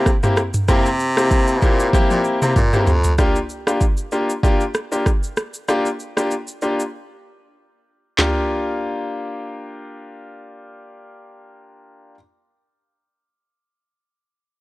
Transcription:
Already playing: C3
0.06 kick, cross-stick, shaker
0.23 A#3 C4 E4 G4, mid tom, shaker
0.37 cross-stick, shaker
0.54 mid tom, shaker
0.68 C3 A#3 C4 E4 G4, kick, cross-stick, shaker
0.86 shaker
1.00 shaker
1.17 A#3 C4 E4 G4, cross-stick, shaker
1.31 kick, shaker
1.47 shaker
1.62 A#2 A#3 C4 E4 G4, kick, shaker
1.80 shaker
1.93 A#3 C4 E4 G4, kick, high tom, shaker
2.10 A#2, high tom, shaker
2.24 shaker
2.42 C3 A#3 C4 E4 G4, mid tom, shaker
2.56 A#2, kick, mid tom, shaker
2.73 A#3 C4 E4 G4, mid tom, shaker
2.87 F2, floor tom, shaker
3.04 floor tom, shaker
3.18 A#3 D4 F4 G4, kick, cross-stick, shaker
3.36 shaker
3.50 shaker
3.67 A#3 D4 F4 G4, cross-stick, shaker
3.81 kick, shaker
3.97 shaker
4.12 A#3 D4 F4 G4, shaker
4.30 shaker
4.43 A#3 D4 F4 G4, kick, shaker
4.61 shaker
4.74 cross-stick, shaker
4.92 A#3 D4 F4 G4, shaker
5.06 kick, cross-stick, shaker
5.23 shaker
5.37 cross-stick, shaker
5.54 shaker
5.68 A#3 D4 F4 G4, cross-stick, shaker
5.86 shaker
6.00 shaker
6.17 A#3 D4 F4 G4, cross-stick, shaker
6.31 shaker
6.47 shaker
6.62 A#3 D4 F4 G4, shaker
6.80 shaker
8.18 A#3 D4 F4 G4, snare, clap, floor tom

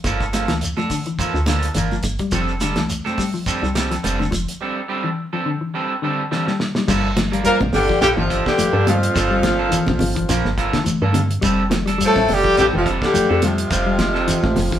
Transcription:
0.04 G1 F3 A#3 D4 A4, kick, closed hi-hat, shekere
0.21 kick, shekere
0.33 F3 A#3 A4, muted clean electric guitar stroke, snare, closed hi-hat, high conga, shekere
0.48 D2 E3, snare, closed hi-hat, high conga, shekere
0.61 closed hi-hat, shekere
0.77 F3 D4 A4, muted clean electric guitar stroke, high conga, shekere
0.90 D3, kick, open hi-hat, shekere
1.06 E3, closed hi-hat, shekere
1.19 F3 A#3 A4, muted clean electric guitar stroke, kick, snare, closed hi-hat, shekere
1.34 D2, shekere
1.46 D3 F3 A#3 D4 A4, snare, closed hi-hat, high conga, shekere
1.63 closed hi-hat, shekere
1.74 G1 E3 A#3 D4, closed hi-hat, shekere
1.91 F3, high conga, shekere
2.03 G1, kick, closed hi-hat, shekere
2.19 G3, kick, closed hi-hat, shekere
2.31 F1 F3 G3 C4 D4 A4, kick, closed hi-hat, shekere
2.48 shekere
2.61 D3 G3 D4 A4, muted clean electric guitar stroke, closed hi-hat, high conga, shekere
2.76 C2 E3, snare, closed hi-hat, high conga, shekere
2.90 closed hi-hat, shekere
3.05 C4 D4 A4, high conga, shekere
3.18 G3, kick, open hi-hat, shekere
3.34 F3, shekere
3.46 G3 C4 D4 A4, kick, closed hi-hat, shekere
3.62 C2 G3, shekere
3.75 G3 C4 D4 A4, snare, closed hi-hat, high conga, shekere
3.91 F3, snare, closed hi-hat, shekere
4.04 F1 G3 C4 D4 A4, closed hi-hat, shekere
4.19 D3, high conga, shekere
4.31 F1 F3, kick, closed hi-hat, shekere
4.48 closed hi-hat, shekere
4.61 G3 C4 D4 A4
4.88 G3 C4 D4 A4
5.04 E3
5.33 F3 C4 D4 A4
5.46 D3
5.61 E3
5.74 G3 C4 D4 A4
6.02 D3 G3 C4 D4 A4
6.31 E3 G3 C4 D4 A4, snare
6.48 G3, snare
6.60 snare
6.75 G3, snare
6.88 G1 F3 G3 A#3 D4 A4, kick, crash, shekere
7.17 F3, snare, closed hi-hat, high conga, shekere
7.32 G3 A#3 D4, muted clean electric guitar stroke, closed hi-hat
7.44 A#2 F3 G3 A#3 A#4, closed hi-hat, high conga, shekere
7.60 A#1, kick, high conga, low conga
7.73 G1 G2 D3 G3 G4, open hi-hat, low conga, shekere
7.89 F3, kick, snare
8.01 A#1 G2 D3 F3 G3 A#3 D4 G4 A4, snare, closed hi-hat, shekere
8.17 G1 F2 C3 E3 F3 F4, high conga
8.30 F3 D4 A4, muted clean electric guitar stroke, kick, closed hi-hat, shekere
8.45 G2 D3 G3 G4, kick, snare
8.58 G1 F3, closed hi-hat, high conga, shekere
8.73 G2 A#3 D4 A4
8.86 F2 A#2 F3 G3 F4, closed hi-hat, high conga, low conga, shekere
9.03 closed hi-hat
9.14 G1 F3 D4 A4, muted clean electric guitar stroke, kick, snare, closed hi-hat, high conga, shekere
9.31 G3
9.43 F3, kick, snare, closed hi-hat, high conga, shekere
9.59 A#3 D4 A4
9.70 E3, closed hi-hat, high conga, shekere
9.87 A#1, kick, snare, high conga, low conga
9.99 G1 F3, open hi-hat, low conga, shekere
10.15 E3, kick, closed hi-hat
10.29 A#1 F3 A#3 D4, muted clean electric guitar stroke, closed hi-hat, shekere
10.45 G1, snare, high conga
10.58 F3 A#3 D4 A4, kick, closed hi-hat, shekere
10.73 D3, kick, snare, closed hi-hat
10.84 G1 E3, closed hi-hat, high conga, shekere
11.02 G2 A#3 D4 A4
11.13 D3, closed hi-hat, high conga, low conga, shekere
11.31 closed hi-hat
11.41 F1 G3 C4 A4, muted clean electric guitar stroke, kick, closed hi-hat, high conga, shekere
11.70 F3, snare, closed hi-hat, high conga, shekere
11.86 G3 D4 A4, muted clean electric guitar stroke, snare, closed hi-hat
11.98 G3, closed hi-hat, high conga, shekere
12.05 A2 F3 A3 A4
12.16 A1, kick, snare, high conga
12.28 F1 G2 D3 G3 G4, open hi-hat, low conga, shekere
12.43 F3, kick
12.57 A1 G2 D3 G3 C4 D4 G4 A4, closed hi-hat, shekere
12.73 F1 F2 C3 E3 F3 F4, high conga
12.85 G3 C4 D4 A4, kick, closed hi-hat, shekere
13.02 G2 D3 G3 G4, kick, snare
13.14 F1 F3, closed hi-hat, high conga, shekere
13.29 F2 C4 D4 A4
13.42 F2 C3 F3 G3 F4, closed hi-hat, high conga, low conga, shekere
13.58 closed hi-hat
13.71 F1 G3 C4 D4, muted clean electric guitar stroke, kick, closed hi-hat, high conga, shekere
13.86 G3
13.99 F3, kick, snare, closed hi-hat, high conga, shekere
14.14 C4 D4 A4, snare
14.27 E3, closed hi-hat, high conga, shekere
14.43 A1, kick, snare, high conga
14.56 F1 F3, snare, open hi-hat, low conga, shekere
14.71 E3, kick, snare, closed hi-hat

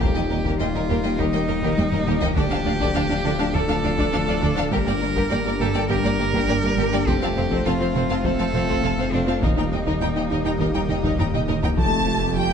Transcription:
0.01 D#1 D#2 D#3 G3 A#3 D#4 G4 A#4 D#5, taiko
0.15 D#2 A#3 D#4 D#5 G5
0.30 D#2 A#3 A#4 D#5
0.44 D#2 D#3 A#3 G4 A#4, taiko
0.60 D#2 A#3 D#4 F4 D#5 G5
0.74 D#2 A#3 D#4 A#4 D#5
0.89 D#2 D#3 A#3 G4 A#4
1.03 D#2 A#3 D#4 D#5 G5
1.18 D#2 D#3 A#3 D#4 G4 A#4, taiko
1.33 D#2 G3 A#3 D#5 G5
1.48 D#2 A#3 D#4 A#4 D#5
1.63 D#2 D#3 A#3 G4 A#4, taiko
1.78 D#2 A#3 D#5 G5, taiko high
1.92 D#2 G3 A#3 A#4 D#5, taiko low-mid
2.07 D#2 D#3 A#3 G4 A#4, taiko low-mid
2.21 D#2 A#3 D#4 D#5 G5, taiko low
2.35 D1 D2 D3 F3 A3 D4 F4 G4 A4 D5, taiko
2.50 D2 D4 F5 A5
2.65 D2 A3 D4 D5 F5
2.80 D2 D3 D4 A4 D5, taiko
2.94 D2 D4 F5 A5
3.09 D2 D4 D5 F5
3.24 D2 D3 D4 A4 D5
3.39 D2 D4 F5 A5
3.54 D2 D3 D4 A4 D5, taiko
3.68 D2 F3 D4 F5 A5
3.83 D2 D4 D5 F5
3.98 D2 D3 D4 A4 D5, taiko
4.12 D2 A3 D4 F5 A5
4.28 D2 F3 D4 D5 F5
4.41 D2 D3 D4 A4 D5
4.57 D2 D4 F5 A5
4.71 G1 G2 G3 A#3 G4 A#4, taiko
4.85 G2 A#3 G4 D5 G5
5.01 G1 G2 A#3 D4 A#4 D5
5.15 G2 G3 A#3 G4 A#4, taiko
5.30 G1 G2 A#3 G4 D5 G5
5.45 G2 A#3 G4 A#4 D5
5.59 G1 G2 G3 A#3 G4 A4 A#4
5.74 G2 A#3 G4 D5 G5
5.89 G1 G2 G3 A#3 G4 A#4, taiko
6.04 G2 A#3 D5 G5
6.19 G1 G2 A#3 G4 A#4 D5
6.33 G2 G3 A#3 G4 A#4, taiko
6.48 G1 G2 A#3 D4 D5 G5
6.63 G2 A#3 A#4 D5
6.78 G1 G2 G3 A#3 G4 A#4
6.93 G2 A#3 G4 D5 G5
7.07 F1 F2 F3 A3 C4 F4 G4 A4 C5 F5, taiko
7.22 F2 C4 F4 F5 A5
7.36 F1 F2 C4 C5 F5
7.50 F2 F3 C4 A4 C5, taiko
7.65 F1 F2 C4 F4 F5 A5
7.80 F2 C4 F4 C5 F5
7.95 F1 F2 F3 C4 A4 C5
8.09 F2 C4 F4 F5 A5
8.24 F1 F2 F3 C4 A4 C5, taiko
8.39 F2 A3 C4 F5 A5
8.54 F1 F2 C4 F4 C5 F5, taiko mid
8.68 F2 F3 C4 A4 C5, taiko
8.83 F1 F2 C4 F5 A5
8.98 F2 A3 C4 C5 F5, taiko mid
9.12 F1 F2 F3 C4 D4 A4 C5
9.27 F2 C4 F4 F5 A5
9.42 D#1 D#2 D#3 G3 A#3 D#4 G4 A#4 D#5, taiko
9.56 D#2 D#4 G5 A#5
9.71 D#2 A#3 D#4 D#5 G5
9.86 D#2 D#3 D#4 A#4 D#5, taiko
10.01 D#2 D#4 G5 A#5
10.15 D#2 D#4 D#5 G5
10.30 D#2 D#3 D#4 A#4 D#5
10.45 D#2 D#4 G5 A#5
10.59 D#2 D#3 D#4 A#4 D#5, taiko
10.74 D#2 G3 D#4 G5 A#5
10.89 D#2 D#4 D#5 G5, taiko mid
11.04 D#2 D#3 D#4 A#4 D#5, taiko
11.18 D#2 A#3 D#4 G5 A#5, taiko low-mid
11.33 D#2 G3 D#4 D#5 G5, taiko mid
11.48 D#2 D#3 D#4 A#4 D#5, taiko low-mid
11.63 D#2 D#4 G5 A#5, taiko low
11.78 F1 F2 F3 G3 A3 C4 G4 F5 A5, taiko, impact
11.93 C4
12.07 F4
12.22 C4
12.36 F3 G3 G5

